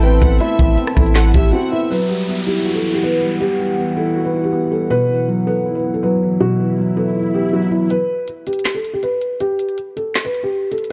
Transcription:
Already playing: A1 A3 B3 C4 E4 A4 E5 A5 B5
0.03 C4 B4 G5, closed hi-hat
0.22 A1 B3 F#5, kick, closed hi-hat
0.40 A3 E4 E5, closed hi-hat
0.59 A1 B3, kick, closed hi-hat
0.78 C4, closed hi-hat
0.87 cross-stick
0.96 A1 E4 A4, kick, cross-stick, closed hi-hat, open hi-hat
1.06 closed hi-hat
1.15 A4 F#5, snare, clap, closed hi-hat
1.34 A1 E4 G4 E5, kick, closed hi-hat
1.53 C4 F#4 F#5
1.72 B3 E4 E5
1.90 E3 F#3 E4 B4 F#5, downlifter
2.09 G3
2.28 B3
2.47 E4 G4
2.65 F#4
2.75 A4
2.83 E4
2.93 G4
3.03 B3 B4
3.22 G3
3.40 E3 G4
3.59 G3
3.78 B3
3.96 E4 A4
4.15 F#4
4.25 B4
4.34 E4
4.44 G4
4.52 B3
4.72 G3 A4
4.90 B2 F#3 B4, swell
5.09 E3
5.28 F#3
5.47 B3 A4
5.66 E4
5.75 B4
5.84 B3
5.94 A4
6.03 F#3 B4
6.22 E3
6.40 B2 F#4
6.59 E3
6.78 F#3
6.97 B3 A4
7.15 E4
7.34 B3 G4
7.53 F#3 F#4
7.71 E3 E4
7.90 B4, closed hi-hat
8.28 closed hi-hat
8.47 G4, closed hi-hat
8.53 closed hi-hat
8.59 closed hi-hat
8.65 snare, clap, closed hi-hat
8.70 closed hi-hat
8.75 A4, closed hi-hat
8.80 closed hi-hat
8.84 closed hi-hat
8.93 G4
9.03 B4, closed hi-hat
9.21 closed hi-hat
9.40 G4, closed hi-hat
9.59 closed hi-hat
9.69 closed hi-hat
9.78 closed hi-hat
9.97 A4, closed hi-hat
10.15 snare, clap, closed hi-hat
10.25 B4
10.34 closed hi-hat
10.43 G4
10.71 A4, closed hi-hat, open hi-hat
10.78 closed hi-hat
10.84 closed hi-hat

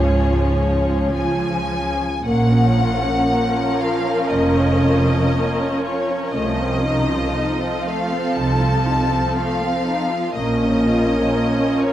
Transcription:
Already playing: C#2 F3 C#4 F4 G#4 C#5
0.00 G#2
1.14 F3 G#5
2.25 A#1 A#2 F3 A#3 C#4 A#4 F#5
2.51 C#4
2.78 F4
3.04 C#4
3.30 A#3
3.57 C#4
3.80 F4 F5
4.07 C#4
4.31 F1 F2 A#3 D#5
4.58 C#4
4.84 F4
5.10 C#4
5.34 A#3
5.59 C#4
5.83 F4 C#5
6.09 C#4
6.33 C2 C3 F3 A3 D#5
6.60 C4
6.84 D#4
7.09 F4
7.33 C4 D#4 A4
7.60 C4
7.83 A3 F5
8.11 C4
8.34 C2 C3 D#4 A5
8.61 F4
8.86 D#4
9.11 C4
9.34 A3 F5
9.60 C4
9.85 D#4
10.10 F4
10.35 A#1 A#2 F3 A#3 C#4 A#4 D#5
10.62 C#4
10.86 F4
11.10 C#4
11.35 A#3
11.59 C#4
11.82 F4 C#5

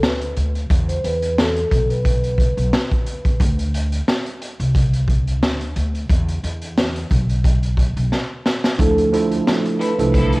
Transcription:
0.02 D2 B4, snare
0.21 closed hi-hat
0.37 D2, closed hi-hat
0.55 closed hi-hat
0.70 E2, kick, closed hi-hat
0.88 C5, closed hi-hat
1.04 E2 B4, closed hi-hat
1.22 closed hi-hat
1.38 A4, snare
1.56 closed hi-hat
1.71 B1, kick, closed hi-hat
1.90 B4, closed hi-hat
2.05 kick, closed hi-hat
2.24 closed hi-hat
2.38 kick, closed hi-hat
2.57 B1, closed hi-hat
2.73 snare
2.91 kick, closed hi-hat
3.06 closed hi-hat
3.25 kick, closed hi-hat
3.40 D2, kick, closed hi-hat
3.59 closed hi-hat
3.74 closed hi-hat
3.92 closed hi-hat
4.08 snare
4.26 closed hi-hat
4.42 closed hi-hat
4.60 C2, closed hi-hat
4.75 kick, closed hi-hat
4.93 closed hi-hat
5.08 kick, closed hi-hat
5.27 closed hi-hat
5.42 D2, snare
5.61 closed hi-hat
5.76 D2, closed hi-hat
5.95 closed hi-hat
6.09 E2, kick, closed hi-hat
6.28 closed hi-hat
6.43 E2, closed hi-hat
6.62 closed hi-hat
6.78 snare
6.96 closed hi-hat
7.11 B1, kick, closed hi-hat
7.29 closed hi-hat
7.44 kick, closed hi-hat
7.63 closed hi-hat
7.77 kick, closed hi-hat
7.97 B1, closed hi-hat
8.12 snare
8.46 snare
8.64 snare
8.78 D2 F3 A3 D4 E4 A4, kick, closed hi-hat
8.98 closed hi-hat
9.12 F3 A3 D4 E4 A4, closed hi-hat
9.31 closed hi-hat
9.47 snare
9.65 closed hi-hat
9.79 F3 E4 A4 B4, closed hi-hat
9.98 C2 F3 A3 D4 E4 A4, closed hi-hat
10.14 F3 E4 A4, kick, closed hi-hat
10.33 closed hi-hat

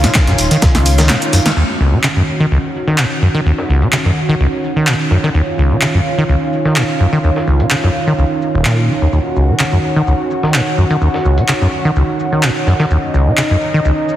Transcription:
Already playing: D#3 C#4 F4
0.04 C#3, snare, closed hi-hat, shekere
0.14 C#3, kick, snare, clap, closed hi-hat, shaker
0.27 A#1 F#2, snare, closed hi-hat
0.38 D#1, open hi-hat, shaker, shekere
0.51 D#3, closed hi-hat, shekere
0.62 C#2, kick, snare, closed hi-hat, shaker
0.75 C#2, snare, open hi-hat
0.86 open hi-hat, shekere, shaker
0.98 D#3, snare, closed hi-hat, shaker, shekere
1.09 A#2, snare, clap, closed hi-hat
1.22 closed hi-hat, shaker
1.33 F#2, snare, open hi-hat, shaker, shekere
1.46 D#3, snare, closed hi-hat, shekere
1.57 D#2 D#3 C#4 F#4
1.80 C#2
1.93 C#3
2.03 C#3, clap
2.16 F#2
2.40 D#3
2.51 C#2, shaker
2.75 shaker
2.87 D#3, snare
2.98 A#2, clap
3.22 F#2
3.35 D#3, closed hi-hat
3.46 D#2, shaker
3.58 snare
3.69 C#2, shaker
3.82 C#3, closed hi-hat
3.92 C#3, clap
4.05 F#2, snare
4.17 shaker
4.29 D#3
4.40 C#2, shaker
4.64 shaker
4.76 D#3
4.87 A#2, clap
5.11 F#2, snare
5.24 D#3, snare
5.35 D#2 F4, shaker
5.58 C#2, shaker
5.71 C#3
5.81 C#3, clap
5.94 F#2
6.06 shaker
6.18 D#3
6.29 C#2, shaker
6.53 shaker
6.65 D#3, snare
6.76 A#2, clap
7.00 F#2, shaker
7.13 D#3, closed hi-hat
7.24 D#2, shaker
7.36 snare
7.47 C#2, shaker
7.60 C#3, closed hi-hat
7.70 C#3, clap
7.84 F#2, snare
7.95 shaker
8.07 D#3
8.18 C#2, shaker
8.42 shaker
8.55 D#1
8.65 A#2, clap
8.78 shaker
8.89 F#3
9.02 D#2, shaker
9.13 D#2 F#4, shaker
9.36 C#2, shaker
9.49 C#3
9.59 C#3, clap
9.73 F#2
9.84 shaker
9.96 D#3
10.07 C#2, shaker
10.31 shaker
10.43 D#3, snare
10.54 A#2, clap
10.78 F#2, shaker
10.90 D#3, closed hi-hat
11.02 D#2, shaker
11.14 snare
11.25 C#2, shaker
11.38 C#3, closed hi-hat
11.48 C#3, clap
11.61 F#2, snare
11.73 shaker
11.85 D#3
11.96 C#2, shaker
12.20 shaker
12.32 D#3
12.43 A#2, clap
12.67 F#2, snare, shaker
12.80 D#3, snare
12.91 D#2 D#4, shaker
13.14 C#2, shaker
13.27 C#3
13.37 C#3, clap
13.51 F#2
13.62 shaker
13.74 D#3
13.85 C#2, shaker
14.09 shaker

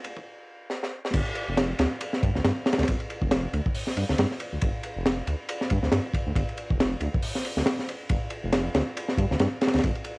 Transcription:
0.05 D2, ride
0.17 kick
0.70 snare
0.83 snare
1.05 snare
1.14 G1, kick, crash, ride
1.35 ride
1.48 F1
1.57 snare, ride
1.79 D2, snare, ride
2.01 ride
2.13 snare
2.23 G2, kick, ride
2.35 D2, snare
2.44 G2, snare, ride
2.66 snare, ride
2.73 snare, ride
2.78 D2, snare, ride
2.83 snare, ride
2.88 G1, kick, ride
3.00 ride
3.10 ride
3.21 F1, kick
3.31 snare, ride
3.53 D2, ride
3.66 kick
3.75 open hi-hat
3.87 snare
3.97 G2, ride
4.09 D2, snare
4.18 G2, snare, ride
4.31 snare
4.40 ride
4.53 D2
4.61 G1, kick, ride
4.83 ride
4.96 F1
5.06 snare, ride
5.27 D2, ride
5.49 ride
5.61 snare
5.70 G2, kick, ride
5.83 D2, snare
5.92 G2, snare, ride
6.14 kick, ride
6.26 D2
6.36 G1, kick, ride
6.49 ride
6.57 ride
6.70 F1, kick
6.80 snare, ride
7.00 D2, ride
7.14 kick
7.22 open hi-hat
7.35 snare
7.44 ride
7.57 D2, snare
7.66 snare, ride
7.79 snare
7.89 ride
8.09 G1, kick, ride
8.30 ride
8.44 F1
8.53 snare, ride
8.75 D2, snare, ride
8.97 ride
9.09 snare
9.18 G2, kick, ride
9.31 D2, snare
9.39 G2, snare, ride
9.61 snare, ride
9.68 snare, ride
9.74 D2, snare, ride
9.79 snare, ride
9.84 G1, kick, ride
9.95 ride
10.05 ride

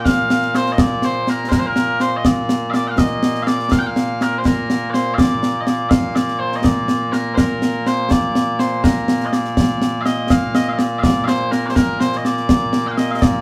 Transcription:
Already playing: A#2 A#3
0.05 F5, concert bass drum, snare
0.30 snare
0.42 snare
0.55 C5, snare
0.66 snare
0.72 D#5
0.78 D5, concert bass drum, snare
1.02 C5, snare
1.27 A#4, snare
1.49 A#4 C5, concert bass drum, snare
1.59 C5
1.66 A#4
1.76 snare
2.00 C5, snare
2.17 D#5
2.25 D5, concert bass drum, snare
2.49 snare
2.71 D5 F5, snare
2.87 F5 G5
2.98 D#5, concert bass drum, snare
3.23 snare
3.35 snare
3.43 F5
3.47 D5, snare
3.59 snare
3.71 F5, concert bass drum, snare
3.79 G5
3.86 F5
3.96 snare
4.21 A#4, snare
4.38 C5
4.45 A#4, concert bass drum, snare
4.70 snare
4.90 C5 D5
4.94 snare
5.14 D5 F5, concert bass drum, snare
5.43 snare
5.61 D#5
5.66 D5, snare
5.90 F5, concert bass drum, snare
6.15 D5, snare
6.28 snare
6.39 C5
6.52 D#5, snare
6.64 D5, concert bass drum, snare
6.88 snare
7.12 A#4, snare
7.34 A#4 C5, concert bass drum, snare
7.62 snare
7.86 C5, snare
8.11 D5, concert bass drum, snare
8.35 snare
8.59 C5, snare
8.84 A#4, concert bass drum, snare
9.08 snare
9.20 snare
9.26 D#5
9.33 D5, snare
9.45 snare
9.57 concert bass drum, snare
9.82 snare
10.01 F5
10.05 D#5, snare
10.30 F5, concert bass drum, snare
10.55 D#5, snare
10.69 D#5 F5
10.78 D5, snare
10.99 D5 F5
11.03 concert bass drum, snare
11.24 C5 F5, snare
11.51 A#4, snare
11.66 D5
11.70 C5
11.75 A#4, concert bass drum, snare
12.00 C5, snare
12.13 snare
12.17 D#5
12.25 D5, snare
12.37 snare
12.49 concert bass drum, snare
12.73 snare
12.87 G5
12.92 F5
12.97 D#5, snare
13.11 F5
13.15 D#5
13.22 D5, concert bass drum, snare

